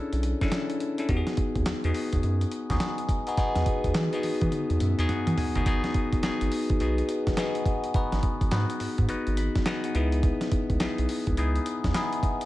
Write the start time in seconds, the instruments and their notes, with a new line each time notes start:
Already playing: tine electric piano C#4 D4 E4 G#4 A4
0.13 analog synth bass B1, closed hi-hat
0.23 closed hi-hat
0.41 tine electric piano C#4 D4 E4 A4, kick, snare, closed hi-hat
0.52 snare, clap, closed hi-hat
0.70 closed hi-hat
0.80 closed hi-hat
0.98 tine electric piano C#4 D4 E4 A4, closed hi-hat
1.09 analog synth bass E2, tine electric piano B3 D#4 F#4 G4, kick, closed hi-hat
1.17 tine electric piano G#4
1.27 snare, closed hi-hat
1.37 kick, closed hi-hat
1.55 analog synth bass D#2, kick, closed hi-hat
1.66 analog synth bass E2, snare, clap, closed hi-hat
1.84 analog synth bass E2, tine electric piano B3 D#4 F#4 G#4, closed hi-hat
1.94 open hi-hat
2.13 analog synth bass E2, kick, closed hi-hat
2.23 analog synth bass F#2, closed hi-hat
2.41 closed hi-hat
2.52 closed hi-hat
2.70 analog synth bass D#2, tine electric piano B3 D#4 F#4 G#4, kick, snare, closed hi-hat
2.80 snare, clap, closed hi-hat
2.98 closed hi-hat
3.09 kick, closed hi-hat
3.27 tine electric piano B3 D#4 F#4 G#4, closed hi-hat
3.37 tine electric piano B3 D#4 F#4 G#4, kick, closed hi-hat
3.55 analog synth bass E2, snare, closed hi-hat
3.66 kick, closed hi-hat
3.84 analog synth bass E2, kick, closed hi-hat
3.94 analog synth bass E3, snare, clap, closed hi-hat
4.13 tine electric piano B3 D#4 F#4 G#4, closed hi-hat
4.23 analog synth bass E3, open hi-hat
4.41 analog synth bass E3, kick, closed hi-hat
4.52 closed hi-hat, high tom
4.70 analog synth bass E2, closed hi-hat
4.80 analog synth bass F#2, tine electric piano E5, closed hi-hat, mid tom
4.99 analog synth bass E2, tine electric piano B3 D#4 F#4 G#4 G#5, closed hi-hat
5.09 tine electric piano F#5, closed hi-hat, mid tom
5.27 analog synth bass E3, closed hi-hat, mid tom
5.38 tine electric piano G#5, floor tom, open hi-hat
5.55 analog synth bass G1, tine electric piano B3 D#4 F#4 G#4, closed hi-hat, floor tom
5.66 analog synth bass G#1, tine electric piano B3 D#4 F#4 G#4, kick, closed hi-hat
5.84 snare, closed hi-hat
5.94 kick, closed hi-hat
6.13 analog synth bass F#1, kick, closed hi-hat
6.23 analog synth bass G#1, tine electric piano B3 D#4 F#4 G#4, snare, clap, closed hi-hat
6.41 analog synth bass G#1, closed hi-hat
6.52 open hi-hat
6.70 analog synth bass G#1, kick, closed hi-hat
6.80 analog synth bass B1, tine electric piano B3 D#4 F#4 G#4, closed hi-hat
6.98 closed hi-hat
7.09 closed hi-hat
7.27 analog synth bass F#1, kick, snare, closed hi-hat
7.37 tine electric piano B3 D#4 F#4 G#4, snare, clap, closed hi-hat
7.55 closed hi-hat
7.66 kick, closed hi-hat
7.84 closed hi-hat
7.94 tine electric piano B3 D#4 F#4 B4, kick, closed hi-hat
8.12 analog synth bass G#1, snare, closed hi-hat
8.23 kick, closed hi-hat
8.41 analog synth bass G#1, kick, closed hi-hat
8.51 analog synth bass G#2, tine electric piano B3 D#4 F#4 B4, snare, clap, closed hi-hat
8.70 closed hi-hat
8.80 analog synth bass G#2, open hi-hat
8.98 analog synth bass G#2, kick, closed hi-hat
9.09 analog synth bass G#1, tine electric piano B3 D#4 F#4 B4, closed hi-hat
9.27 analog synth bass G#1, closed hi-hat
9.37 tine electric piano B5, closed hi-hat
9.56 kick, snare, closed hi-hat
9.66 tine electric piano B3 D#4 F#4 B4 G#5, snare, clap, closed hi-hat
9.84 tine electric piano F#5, closed hi-hat
9.95 analog synth bass C#2, tine electric piano B3 D#4 E4 G#4 E5, closed hi-hat
10.12 closed hi-hat
10.23 kick, closed hi-hat
10.41 snare, closed hi-hat
10.52 kick, closed hi-hat
10.70 analog synth bass C#2, kick, closed hi-hat
10.80 analog synth bass B1, tine electric piano B3 D#4 E4 G#4, snare, clap, closed hi-hat
10.98 analog synth bass B1, closed hi-hat
11.09 open hi-hat
11.27 analog synth bass C#2, kick, closed hi-hat
11.37 analog synth bass C#2, tine electric piano B3 D#4 E4 G#4, closed hi-hat
11.56 closed hi-hat
11.66 closed hi-hat
11.84 analog synth bass E2, kick, snare, closed hi-hat
11.95 tine electric piano B3 D#4 E4 G#4, snare, clap, closed hi-hat
12.13 closed hi-hat
12.23 kick, closed hi-hat
12.41 closed hi-hat